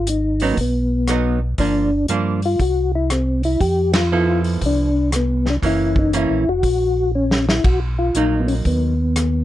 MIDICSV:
0, 0, Header, 1, 5, 480
1, 0, Start_track
1, 0, Tempo, 504626
1, 1511, Time_signature, 4, 2, 24, 8
1, 8982, End_track
2, 0, Start_track
2, 0, Title_t, "Tonewheel organ"
2, 0, Program_c, 0, 16
2, 89, Note_on_c, 0, 63, 70
2, 405, Note_off_c, 0, 63, 0
2, 409, Note_on_c, 0, 61, 65
2, 495, Note_on_c, 0, 58, 49
2, 518, Note_off_c, 0, 61, 0
2, 544, Note_off_c, 0, 58, 0
2, 578, Note_on_c, 0, 59, 72
2, 1324, Note_off_c, 0, 59, 0
2, 1520, Note_on_c, 0, 62, 86
2, 1963, Note_off_c, 0, 62, 0
2, 2335, Note_on_c, 0, 65, 70
2, 2474, Note_off_c, 0, 65, 0
2, 2485, Note_on_c, 0, 66, 86
2, 2774, Note_off_c, 0, 66, 0
2, 2809, Note_on_c, 0, 64, 76
2, 2951, Note_off_c, 0, 64, 0
2, 2965, Note_on_c, 0, 60, 67
2, 3254, Note_off_c, 0, 60, 0
2, 3282, Note_on_c, 0, 64, 83
2, 3427, Note_off_c, 0, 64, 0
2, 3434, Note_on_c, 0, 67, 94
2, 3728, Note_off_c, 0, 67, 0
2, 3760, Note_on_c, 0, 65, 83
2, 4202, Note_off_c, 0, 65, 0
2, 4433, Note_on_c, 0, 62, 77
2, 4860, Note_off_c, 0, 62, 0
2, 4908, Note_on_c, 0, 59, 70
2, 5217, Note_off_c, 0, 59, 0
2, 5229, Note_on_c, 0, 62, 77
2, 5293, Note_off_c, 0, 62, 0
2, 5386, Note_on_c, 0, 64, 81
2, 5695, Note_off_c, 0, 64, 0
2, 5698, Note_on_c, 0, 63, 75
2, 5836, Note_off_c, 0, 63, 0
2, 5867, Note_on_c, 0, 64, 80
2, 6174, Note_on_c, 0, 66, 102
2, 6175, Note_off_c, 0, 64, 0
2, 6766, Note_off_c, 0, 66, 0
2, 6804, Note_on_c, 0, 61, 71
2, 7093, Note_off_c, 0, 61, 0
2, 7121, Note_on_c, 0, 64, 73
2, 7266, Note_off_c, 0, 64, 0
2, 7274, Note_on_c, 0, 66, 80
2, 7416, Note_off_c, 0, 66, 0
2, 7596, Note_on_c, 0, 65, 82
2, 7760, Note_off_c, 0, 65, 0
2, 7767, Note_on_c, 0, 63, 81
2, 7989, Note_on_c, 0, 59, 53
2, 8004, Note_off_c, 0, 63, 0
2, 8059, Note_on_c, 0, 61, 65
2, 8068, Note_off_c, 0, 59, 0
2, 8134, Note_off_c, 0, 61, 0
2, 8245, Note_on_c, 0, 59, 67
2, 8982, Note_off_c, 0, 59, 0
2, 8982, End_track
3, 0, Start_track
3, 0, Title_t, "Hollow-body jazz guitar"
3, 0, Program_c, 1, 26
3, 397, Note_on_c, 1, 54, 53
3, 400, Note_on_c, 1, 59, 55
3, 407, Note_on_c, 1, 63, 62
3, 538, Note_off_c, 1, 54, 0
3, 539, Note_off_c, 1, 59, 0
3, 543, Note_off_c, 1, 63, 0
3, 1034, Note_on_c, 1, 54, 51
3, 1045, Note_on_c, 1, 59, 55
3, 1048, Note_on_c, 1, 63, 56
3, 1318, Note_off_c, 1, 54, 0
3, 1323, Note_off_c, 1, 59, 0
3, 1325, Note_off_c, 1, 63, 0
3, 1512, Note_on_c, 1, 53, 44
3, 1523, Note_on_c, 1, 58, 43
3, 1528, Note_on_c, 1, 62, 45
3, 1797, Note_off_c, 1, 53, 0
3, 1802, Note_off_c, 1, 58, 0
3, 1805, Note_off_c, 1, 62, 0
3, 1993, Note_on_c, 1, 53, 46
3, 1997, Note_on_c, 1, 58, 55
3, 2000, Note_on_c, 1, 62, 53
3, 2278, Note_off_c, 1, 53, 0
3, 2280, Note_off_c, 1, 58, 0
3, 2282, Note_off_c, 1, 62, 0
3, 3921, Note_on_c, 1, 53, 44
3, 3923, Note_on_c, 1, 64, 51
3, 3927, Note_on_c, 1, 59, 47
3, 3928, Note_on_c, 1, 69, 55
3, 4651, Note_off_c, 1, 53, 0
3, 4652, Note_off_c, 1, 64, 0
3, 4654, Note_off_c, 1, 59, 0
3, 4654, Note_off_c, 1, 69, 0
3, 5352, Note_on_c, 1, 52, 49
3, 5358, Note_on_c, 1, 58, 44
3, 5366, Note_on_c, 1, 61, 43
3, 5815, Note_off_c, 1, 52, 0
3, 5819, Note_off_c, 1, 58, 0
3, 5823, Note_off_c, 1, 61, 0
3, 5836, Note_on_c, 1, 52, 44
3, 5838, Note_on_c, 1, 58, 47
3, 5845, Note_on_c, 1, 61, 50
3, 6119, Note_off_c, 1, 52, 0
3, 6120, Note_off_c, 1, 58, 0
3, 6124, Note_off_c, 1, 61, 0
3, 7760, Note_on_c, 1, 54, 37
3, 7770, Note_on_c, 1, 58, 52
3, 7773, Note_on_c, 1, 63, 49
3, 8488, Note_off_c, 1, 54, 0
3, 8493, Note_off_c, 1, 58, 0
3, 8495, Note_off_c, 1, 63, 0
3, 8982, End_track
4, 0, Start_track
4, 0, Title_t, "Tonewheel organ"
4, 0, Program_c, 2, 16
4, 0, Note_on_c, 2, 32, 69
4, 507, Note_off_c, 2, 32, 0
4, 539, Note_on_c, 2, 35, 73
4, 1468, Note_off_c, 2, 35, 0
4, 1503, Note_on_c, 2, 31, 77
4, 1954, Note_off_c, 2, 31, 0
4, 1985, Note_on_c, 2, 43, 71
4, 2435, Note_off_c, 2, 43, 0
4, 2465, Note_on_c, 2, 36, 71
4, 3391, Note_off_c, 2, 36, 0
4, 3426, Note_on_c, 2, 41, 86
4, 4351, Note_off_c, 2, 41, 0
4, 4386, Note_on_c, 2, 36, 76
4, 5311, Note_off_c, 2, 36, 0
4, 5347, Note_on_c, 2, 30, 73
4, 5951, Note_off_c, 2, 30, 0
4, 5987, Note_on_c, 2, 34, 53
4, 6138, Note_off_c, 2, 34, 0
4, 6154, Note_on_c, 2, 29, 56
4, 6302, Note_off_c, 2, 29, 0
4, 6302, Note_on_c, 2, 34, 64
4, 7228, Note_off_c, 2, 34, 0
4, 7266, Note_on_c, 2, 35, 75
4, 7714, Note_off_c, 2, 35, 0
4, 7750, Note_on_c, 2, 34, 69
4, 8196, Note_off_c, 2, 34, 0
4, 8231, Note_on_c, 2, 39, 77
4, 8982, Note_off_c, 2, 39, 0
4, 8982, End_track
5, 0, Start_track
5, 0, Title_t, "Drums"
5, 65, Note_on_c, 9, 42, 50
5, 160, Note_off_c, 9, 42, 0
5, 380, Note_on_c, 9, 46, 36
5, 475, Note_off_c, 9, 46, 0
5, 544, Note_on_c, 9, 36, 31
5, 547, Note_on_c, 9, 46, 41
5, 639, Note_off_c, 9, 36, 0
5, 642, Note_off_c, 9, 46, 0
5, 1023, Note_on_c, 9, 37, 53
5, 1023, Note_on_c, 9, 42, 46
5, 1118, Note_off_c, 9, 37, 0
5, 1118, Note_off_c, 9, 42, 0
5, 1504, Note_on_c, 9, 46, 37
5, 1505, Note_on_c, 9, 36, 27
5, 1599, Note_off_c, 9, 46, 0
5, 1600, Note_off_c, 9, 36, 0
5, 1982, Note_on_c, 9, 42, 45
5, 2077, Note_off_c, 9, 42, 0
5, 2304, Note_on_c, 9, 46, 33
5, 2399, Note_off_c, 9, 46, 0
5, 2469, Note_on_c, 9, 36, 32
5, 2469, Note_on_c, 9, 46, 38
5, 2564, Note_off_c, 9, 36, 0
5, 2564, Note_off_c, 9, 46, 0
5, 2950, Note_on_c, 9, 37, 51
5, 2950, Note_on_c, 9, 42, 49
5, 3045, Note_off_c, 9, 37, 0
5, 3045, Note_off_c, 9, 42, 0
5, 3265, Note_on_c, 9, 46, 33
5, 3361, Note_off_c, 9, 46, 0
5, 3429, Note_on_c, 9, 36, 27
5, 3431, Note_on_c, 9, 46, 40
5, 3524, Note_off_c, 9, 36, 0
5, 3526, Note_off_c, 9, 46, 0
5, 3743, Note_on_c, 9, 38, 71
5, 3743, Note_on_c, 9, 51, 62
5, 3838, Note_off_c, 9, 38, 0
5, 3838, Note_off_c, 9, 51, 0
5, 4227, Note_on_c, 9, 46, 31
5, 4322, Note_off_c, 9, 46, 0
5, 4390, Note_on_c, 9, 36, 29
5, 4391, Note_on_c, 9, 46, 43
5, 4485, Note_off_c, 9, 36, 0
5, 4486, Note_off_c, 9, 46, 0
5, 4874, Note_on_c, 9, 37, 59
5, 4874, Note_on_c, 9, 42, 48
5, 4969, Note_off_c, 9, 37, 0
5, 4969, Note_off_c, 9, 42, 0
5, 5191, Note_on_c, 9, 38, 27
5, 5287, Note_off_c, 9, 38, 0
5, 5351, Note_on_c, 9, 36, 27
5, 5356, Note_on_c, 9, 46, 37
5, 5446, Note_off_c, 9, 36, 0
5, 5452, Note_off_c, 9, 46, 0
5, 5668, Note_on_c, 9, 36, 43
5, 5763, Note_off_c, 9, 36, 0
5, 5834, Note_on_c, 9, 42, 47
5, 5929, Note_off_c, 9, 42, 0
5, 6308, Note_on_c, 9, 36, 32
5, 6309, Note_on_c, 9, 46, 41
5, 6403, Note_off_c, 9, 36, 0
5, 6404, Note_off_c, 9, 46, 0
5, 6956, Note_on_c, 9, 38, 53
5, 7051, Note_off_c, 9, 38, 0
5, 7121, Note_on_c, 9, 38, 64
5, 7216, Note_off_c, 9, 38, 0
5, 7271, Note_on_c, 9, 36, 60
5, 7272, Note_on_c, 9, 51, 58
5, 7366, Note_off_c, 9, 36, 0
5, 7367, Note_off_c, 9, 51, 0
5, 7749, Note_on_c, 9, 42, 45
5, 7844, Note_off_c, 9, 42, 0
5, 8069, Note_on_c, 9, 46, 36
5, 8164, Note_off_c, 9, 46, 0
5, 8229, Note_on_c, 9, 46, 38
5, 8230, Note_on_c, 9, 36, 30
5, 8324, Note_off_c, 9, 46, 0
5, 8325, Note_off_c, 9, 36, 0
5, 8713, Note_on_c, 9, 37, 55
5, 8713, Note_on_c, 9, 42, 53
5, 8808, Note_off_c, 9, 37, 0
5, 8808, Note_off_c, 9, 42, 0
5, 8982, End_track
0, 0, End_of_file